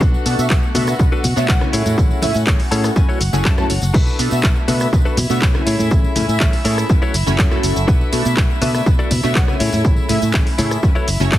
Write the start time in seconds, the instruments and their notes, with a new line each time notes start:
Already playing: string section F#4 F#5
0.01 fingered electric bass B1, clean electric guitar D4 F#4 A4 B4, kick, tambourine, shaker
0.14 muted fingered electric bass stroke, tambourine
0.25 fingered electric bass B2, analog polysynth A3 B3 D4 F#4 A4, open hi-hat, shaker
0.38 fingered electric bass B2, analog polysynth E5, tambourine, shaker
0.50 fingered electric bass B1, clean electric guitar D4 F#4 A4 B4, analog polysynth E5, kick, clap, tambourine, shaker
0.63 tambourine
0.74 fingered electric bass B2, analog polysynth A3 B3 D4 F#4 B4 E5, clean electric guitar D4 F#4 A4 B4, open hi-hat, high conga, shaker
0.87 analog polysynth E5, cross-stick, tambourine, shaker
0.99 fingered electric bass B1, analog polysynth A3 B3 D4 F#4 B4, kick, tambourine, low conga, shaker
1.12 clean electric guitar D4 F#4 A4 B4, tambourine
1.24 fingered electric bass B2, open hi-hat, high conga, low conga, shaker
1.36 fingered electric bass B2, analog polysynth A3 B3 D4 F#4 C#5 E5, muted clean electric guitar stroke, tambourine, shaker
1.48 fingered electric bass B1, clean electric guitar D4 F#4 A4 B4, analog polysynth F#5, kick, clap, shaker
1.60 analog polysynth A3 C#4 E4 G#5, cross-stick, tambourine, high conga
1.73 fingered electric bass A2, clean electric guitar E4 G#4 A4 C#5, open hi-hat, shaker
1.86 fingered electric bass A2, tambourine, low conga, shaker
1.98 fingered electric bass A1, kick, tambourine, shaker
2.11 muted fingered electric bass stroke, tambourine
2.22 fingered electric bass A2, analog polysynth A3 C#4 E4 E5 G#5, open hi-hat, high conga, low conga, shaker
2.34 fingered electric bass A2, tambourine, shaker
2.46 fingered electric bass A1, clean electric guitar E4 G#4 A4 C#5, kick, clap, tambourine, shaker
2.59 open hi-hat, tambourine
2.71 fingered electric bass A2, analog polysynth A3 C#4 E4 G#4 A4, clean electric guitar E4 G#4 A4 C#5 A5, open hi-hat, shaker
2.84 cross-stick, tambourine, shaker
2.95 fingered electric bass F#2, analog polysynth A3 C#4 E4 F#4 B4, clean electric guitar G#5, kick, tambourine, shaker
3.09 clean electric guitar E4 F#4 A4 C#5, tambourine
3.21 fingered electric bass F#1, clean electric guitar F#5, open hi-hat, shaker
3.33 fingered electric bass F#1, analog polysynth A3 C#4 E4 F#4 G#4, muted clean electric guitar stroke, tambourine, high conga, shaker
3.45 fingered electric bass F#2, clean electric guitar E4 F#4 A4 C#5 E5, analog polysynth A5, kick, clap, tambourine, shaker
3.57 analog polysynth A3 C#4 E4 F#4 A4 A5, cross-stick, tambourine, low conga
3.70 fingered electric bass F#1, clean electric guitar C#5, open hi-hat, shaker
3.81 fingered electric bass F#1, muted clean electric guitar stroke, tambourine, high conga, shaker
3.94 fingered electric bass B1, clean electric guitar D4 F#4 A4 B4, string section E4 E5, kick, crash, tambourine, shaker
4.07 muted fingered electric bass stroke, tambourine
4.19 fingered electric bass B2, analog polysynth A3 B3 D4 F#4 A4, open hi-hat, shaker
4.31 fingered electric bass B2, analog polysynth E5, tambourine, shaker
4.43 fingered electric bass B1, clean electric guitar D4 F#4 A4 B4, kick, clap, tambourine, shaker
4.56 tambourine
4.68 fingered electric bass B2, analog polysynth A3 B3 D4 F#4 B4 E5, clean electric guitar D4 F#4 A4 B4, open hi-hat, high conga, shaker
4.80 analog polysynth E5, cross-stick, tambourine, shaker
4.92 fingered electric bass B1, analog polysynth A3 B3 D4 F#4 B4, kick, tambourine, low conga, shaker
5.05 clean electric guitar D4 F#4 A4 B4, muted fingered electric bass stroke, tambourine
5.17 fingered electric bass B2, open hi-hat, high conga, low conga, shaker
5.30 fingered electric bass B2, analog polysynth A3 B3 D4 F#4 C#5 E5, muted clean electric guitar stroke, tambourine, shaker
5.42 fingered electric bass B1, clean electric guitar D4 F#4 A4 B4, kick, clap, tambourine, shaker
5.54 analog polysynth A3 C#4 E4 G#5, cross-stick, tambourine, high conga
5.66 fingered electric bass A2, clean electric guitar E4 G#4 A4 C#5, open hi-hat, shaker
5.79 fingered electric bass A2, tambourine, low conga, shaker
5.91 fingered electric bass A1, kick, tambourine, shaker
6.04 muted fingered electric bass stroke, tambourine
6.16 fingered electric bass A2, analog polysynth A3 C#4 E4 G#5, open hi-hat, high conga, low conga, shaker
6.28 fingered electric bass A2, analog polysynth E5, tambourine, shaker
6.40 fingered electric bass A1, clean electric guitar E4 G#4 A4 C#5, kick, clap, shaker
6.52 open hi-hat, tambourine
6.65 fingered electric bass A2, analog polysynth A3 C#4 E4 G#4 A4, clean electric guitar E4 G#4 A4 C#5, open hi-hat, shaker
6.78 cross-stick, tambourine, shaker
6.89 fingered electric bass F#2, analog polysynth A3 C#4 E4 F#4 B4, kick, tambourine, shaker
7.02 clean electric guitar E4 F#4 A4 C#5, tambourine
7.14 fingered electric bass F#1, open hi-hat, shaker
7.26 fingered electric bass F#1, analog polysynth A3 C#4 E4 F#4 C#5, muted clean electric guitar stroke, tambourine, high conga, shaker
7.38 fingered electric bass F#2, clean electric guitar E4 F#4 A4 C#5, kick, clap, tambourine, shaker
7.51 analog polysynth A3 C#4 E4 F#4 A4, cross-stick, tambourine, low conga
7.63 fingered electric bass F#1, open hi-hat, shaker
7.76 fingered electric bass F#1, muted clean electric guitar stroke, tambourine, shaker
7.88 fingered electric bass B1, clean electric guitar D4 F#4 A4 B4, kick, tambourine, shaker
8.01 muted fingered electric bass stroke, tambourine
8.12 fingered electric bass B2, analog polysynth A3 B3 D4 F#4 A4, open hi-hat, shaker
8.25 fingered electric bass B2, analog polysynth E5, tambourine, shaker
8.37 fingered electric bass B1, clean electric guitar D4 F#4 A4 B4, analog polysynth E5, kick, clap, tambourine, shaker
8.50 tambourine
8.61 fingered electric bass B2, analog polysynth A3 B3 D4 F#4 B4 E5, clean electric guitar D4 F#4 A4 B4, open hi-hat, high conga, shaker
8.74 analog polysynth E5, cross-stick, tambourine, shaker
8.86 fingered electric bass B1, analog polysynth A3 B3 D4 F#4 B4, kick, tambourine, low conga, shaker
8.99 clean electric guitar D4 F#4 A4 D5, tambourine
9.11 fingered electric bass B2, open hi-hat, high conga, low conga, shaker
9.23 fingered electric bass B2, analog polysynth A3 B3 D4 F#4 C#5 E5, muted clean electric guitar stroke, tambourine, shaker
9.35 fingered electric bass B1, clean electric guitar D4 F#4 A4 B4, analog polysynth F#5, kick, clap, shaker
9.47 analog polysynth A3 C#4 E4 G#5, cross-stick, tambourine, high conga
9.59 fingered electric bass A2, clean electric guitar E4 G#4 A4 C#5, open hi-hat, shaker
9.72 fingered electric bass A2, tambourine, low conga, shaker
9.84 fingered electric bass A1, kick, tambourine, shaker
9.96 muted fingered electric bass stroke, tambourine
10.09 fingered electric bass A2, analog polysynth A3 C#4 E4 E5 G#5, open hi-hat, high conga, low conga, shaker
10.22 fingered electric bass A2, tambourine, shaker
10.33 fingered electric bass A1, clean electric guitar E4 G#4 A4 C#5, kick, clap, tambourine, shaker
10.47 open hi-hat, tambourine
10.58 fingered electric bass A2, analog polysynth A3 C#4 E4 G#4 A4, clean electric guitar E4 G#4 A4 C#5, open hi-hat, high conga, shaker
10.71 cross-stick, tambourine, shaker
10.83 fingered electric bass F#2, analog polysynth A3 C#4 E4 F#4 B4, kick, tambourine, shaker
10.95 clean electric guitar E4 F#4 A4 C#5, tambourine
11.08 fingered electric bass F#1, open hi-hat, shaker
11.20 fingered electric bass F#1, analog polysynth A3 C#4 E4 F#4 C#5, muted clean electric guitar stroke, tambourine, high conga, shaker
11.32 fingered electric bass F#2, clean electric guitar E4 F#4 A4 C#5, analog polysynth A5, kick, clap, tambourine, shaker